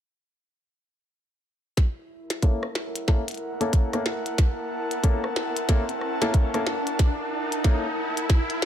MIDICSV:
0, 0, Header, 1, 5, 480
1, 0, Start_track
1, 0, Tempo, 652174
1, 1305, Time_signature, 4, 2, 24, 8
1, 6369, End_track
2, 0, Start_track
2, 0, Title_t, "Analog synth pad"
2, 0, Program_c, 0, 89
2, 1305, Note_on_c, 0, 64, 80
2, 1626, Note_on_c, 0, 70, 76
2, 1994, Note_on_c, 0, 78, 87
2, 2709, Note_on_c, 0, 81, 77
2, 6369, Note_off_c, 0, 64, 0
2, 6369, Note_off_c, 0, 70, 0
2, 6369, Note_off_c, 0, 78, 0
2, 6369, Note_off_c, 0, 81, 0
2, 6369, End_track
3, 0, Start_track
3, 0, Title_t, "Grand piano"
3, 0, Program_c, 1, 0
3, 1784, Note_on_c, 1, 58, 75
3, 1784, Note_on_c, 1, 61, 71
3, 1784, Note_on_c, 1, 69, 83
3, 1785, Note_on_c, 1, 64, 71
3, 1930, Note_off_c, 1, 58, 0
3, 1930, Note_off_c, 1, 61, 0
3, 1930, Note_off_c, 1, 69, 0
3, 1931, Note_off_c, 1, 64, 0
3, 2263, Note_on_c, 1, 61, 74
3, 2264, Note_on_c, 1, 58, 82
3, 2264, Note_on_c, 1, 64, 71
3, 2264, Note_on_c, 1, 69, 85
3, 2355, Note_off_c, 1, 58, 0
3, 2355, Note_off_c, 1, 61, 0
3, 2355, Note_off_c, 1, 64, 0
3, 2356, Note_off_c, 1, 69, 0
3, 2653, Note_on_c, 1, 58, 81
3, 2653, Note_on_c, 1, 61, 76
3, 2653, Note_on_c, 1, 64, 76
3, 2654, Note_on_c, 1, 69, 94
3, 2858, Note_off_c, 1, 58, 0
3, 2858, Note_off_c, 1, 61, 0
3, 2858, Note_off_c, 1, 64, 0
3, 2858, Note_off_c, 1, 69, 0
3, 2893, Note_on_c, 1, 61, 69
3, 2893, Note_on_c, 1, 64, 72
3, 2893, Note_on_c, 1, 69, 82
3, 2894, Note_on_c, 1, 58, 78
3, 2949, Note_off_c, 1, 61, 0
3, 2949, Note_off_c, 1, 64, 0
3, 2949, Note_off_c, 1, 69, 0
3, 2950, Note_off_c, 1, 58, 0
3, 3705, Note_on_c, 1, 58, 76
3, 3705, Note_on_c, 1, 61, 70
3, 3705, Note_on_c, 1, 64, 70
3, 3705, Note_on_c, 1, 69, 88
3, 3851, Note_off_c, 1, 58, 0
3, 3851, Note_off_c, 1, 61, 0
3, 3851, Note_off_c, 1, 64, 0
3, 3851, Note_off_c, 1, 69, 0
3, 4185, Note_on_c, 1, 58, 83
3, 4185, Note_on_c, 1, 61, 72
3, 4185, Note_on_c, 1, 64, 73
3, 4185, Note_on_c, 1, 69, 89
3, 4276, Note_off_c, 1, 58, 0
3, 4276, Note_off_c, 1, 61, 0
3, 4276, Note_off_c, 1, 64, 0
3, 4276, Note_off_c, 1, 69, 0
3, 4573, Note_on_c, 1, 64, 79
3, 4574, Note_on_c, 1, 58, 82
3, 4574, Note_on_c, 1, 61, 73
3, 4574, Note_on_c, 1, 69, 88
3, 4778, Note_off_c, 1, 58, 0
3, 4778, Note_off_c, 1, 61, 0
3, 4778, Note_off_c, 1, 64, 0
3, 4778, Note_off_c, 1, 69, 0
3, 4812, Note_on_c, 1, 58, 79
3, 4812, Note_on_c, 1, 64, 70
3, 4812, Note_on_c, 1, 69, 88
3, 4813, Note_on_c, 1, 61, 68
3, 4869, Note_off_c, 1, 58, 0
3, 4869, Note_off_c, 1, 61, 0
3, 4869, Note_off_c, 1, 64, 0
3, 4869, Note_off_c, 1, 69, 0
3, 5623, Note_on_c, 1, 58, 73
3, 5623, Note_on_c, 1, 61, 67
3, 5623, Note_on_c, 1, 69, 77
3, 5624, Note_on_c, 1, 64, 67
3, 5770, Note_off_c, 1, 58, 0
3, 5770, Note_off_c, 1, 61, 0
3, 5770, Note_off_c, 1, 64, 0
3, 5770, Note_off_c, 1, 69, 0
3, 6369, End_track
4, 0, Start_track
4, 0, Title_t, "Riser"
4, 0, Program_c, 2, 103
4, 1305, Note_on_c, 2, 60, 77
4, 6369, Note_off_c, 2, 60, 0
4, 6369, End_track
5, 0, Start_track
5, 0, Title_t, "Drums"
5, 1305, Note_on_c, 9, 36, 94
5, 1306, Note_on_c, 9, 38, 47
5, 1306, Note_on_c, 9, 42, 65
5, 1378, Note_off_c, 9, 36, 0
5, 1379, Note_off_c, 9, 38, 0
5, 1379, Note_off_c, 9, 42, 0
5, 1694, Note_on_c, 9, 38, 39
5, 1694, Note_on_c, 9, 42, 52
5, 1768, Note_off_c, 9, 38, 0
5, 1768, Note_off_c, 9, 42, 0
5, 1785, Note_on_c, 9, 36, 89
5, 1785, Note_on_c, 9, 42, 62
5, 1858, Note_off_c, 9, 42, 0
5, 1859, Note_off_c, 9, 36, 0
5, 1934, Note_on_c, 9, 37, 53
5, 2008, Note_off_c, 9, 37, 0
5, 2026, Note_on_c, 9, 38, 47
5, 2100, Note_off_c, 9, 38, 0
5, 2175, Note_on_c, 9, 42, 54
5, 2249, Note_off_c, 9, 42, 0
5, 2266, Note_on_c, 9, 36, 91
5, 2266, Note_on_c, 9, 38, 51
5, 2339, Note_off_c, 9, 36, 0
5, 2340, Note_off_c, 9, 38, 0
5, 2415, Note_on_c, 9, 42, 70
5, 2438, Note_off_c, 9, 42, 0
5, 2438, Note_on_c, 9, 42, 28
5, 2461, Note_off_c, 9, 42, 0
5, 2461, Note_on_c, 9, 42, 24
5, 2484, Note_off_c, 9, 42, 0
5, 2484, Note_on_c, 9, 42, 19
5, 2558, Note_off_c, 9, 42, 0
5, 2656, Note_on_c, 9, 42, 58
5, 2730, Note_off_c, 9, 42, 0
5, 2746, Note_on_c, 9, 36, 96
5, 2746, Note_on_c, 9, 42, 70
5, 2819, Note_off_c, 9, 36, 0
5, 2819, Note_off_c, 9, 42, 0
5, 2895, Note_on_c, 9, 37, 53
5, 2895, Note_on_c, 9, 42, 35
5, 2969, Note_off_c, 9, 37, 0
5, 2969, Note_off_c, 9, 42, 0
5, 2986, Note_on_c, 9, 38, 54
5, 3059, Note_off_c, 9, 38, 0
5, 3135, Note_on_c, 9, 42, 52
5, 3209, Note_off_c, 9, 42, 0
5, 3226, Note_on_c, 9, 36, 91
5, 3226, Note_on_c, 9, 38, 56
5, 3226, Note_on_c, 9, 42, 69
5, 3299, Note_off_c, 9, 36, 0
5, 3300, Note_off_c, 9, 38, 0
5, 3300, Note_off_c, 9, 42, 0
5, 3615, Note_on_c, 9, 42, 52
5, 3689, Note_off_c, 9, 42, 0
5, 3706, Note_on_c, 9, 36, 91
5, 3706, Note_on_c, 9, 42, 68
5, 3779, Note_off_c, 9, 36, 0
5, 3780, Note_off_c, 9, 42, 0
5, 3856, Note_on_c, 9, 37, 52
5, 3929, Note_off_c, 9, 37, 0
5, 3947, Note_on_c, 9, 38, 64
5, 4020, Note_off_c, 9, 38, 0
5, 4096, Note_on_c, 9, 42, 56
5, 4170, Note_off_c, 9, 42, 0
5, 4186, Note_on_c, 9, 36, 87
5, 4186, Note_on_c, 9, 38, 67
5, 4186, Note_on_c, 9, 42, 65
5, 4259, Note_off_c, 9, 36, 0
5, 4259, Note_off_c, 9, 38, 0
5, 4259, Note_off_c, 9, 42, 0
5, 4335, Note_on_c, 9, 42, 37
5, 4409, Note_off_c, 9, 42, 0
5, 4426, Note_on_c, 9, 37, 38
5, 4500, Note_off_c, 9, 37, 0
5, 4575, Note_on_c, 9, 38, 60
5, 4575, Note_on_c, 9, 42, 55
5, 4649, Note_off_c, 9, 38, 0
5, 4649, Note_off_c, 9, 42, 0
5, 4666, Note_on_c, 9, 36, 101
5, 4666, Note_on_c, 9, 42, 68
5, 4739, Note_off_c, 9, 36, 0
5, 4739, Note_off_c, 9, 42, 0
5, 4815, Note_on_c, 9, 37, 50
5, 4815, Note_on_c, 9, 42, 36
5, 4889, Note_off_c, 9, 37, 0
5, 4889, Note_off_c, 9, 42, 0
5, 4906, Note_on_c, 9, 38, 72
5, 4979, Note_off_c, 9, 38, 0
5, 5055, Note_on_c, 9, 42, 53
5, 5129, Note_off_c, 9, 42, 0
5, 5146, Note_on_c, 9, 36, 102
5, 5147, Note_on_c, 9, 38, 74
5, 5147, Note_on_c, 9, 42, 72
5, 5219, Note_off_c, 9, 36, 0
5, 5220, Note_off_c, 9, 38, 0
5, 5220, Note_off_c, 9, 42, 0
5, 5536, Note_on_c, 9, 42, 51
5, 5609, Note_off_c, 9, 42, 0
5, 5626, Note_on_c, 9, 36, 94
5, 5626, Note_on_c, 9, 38, 78
5, 5626, Note_on_c, 9, 42, 62
5, 5699, Note_off_c, 9, 36, 0
5, 5700, Note_off_c, 9, 38, 0
5, 5700, Note_off_c, 9, 42, 0
5, 6015, Note_on_c, 9, 42, 56
5, 6088, Note_off_c, 9, 42, 0
5, 6105, Note_on_c, 9, 36, 94
5, 6106, Note_on_c, 9, 38, 86
5, 6106, Note_on_c, 9, 42, 68
5, 6179, Note_off_c, 9, 36, 0
5, 6180, Note_off_c, 9, 38, 0
5, 6180, Note_off_c, 9, 42, 0
5, 6255, Note_on_c, 9, 42, 38
5, 6328, Note_off_c, 9, 42, 0
5, 6346, Note_on_c, 9, 38, 82
5, 6369, Note_off_c, 9, 38, 0
5, 6369, End_track
0, 0, End_of_file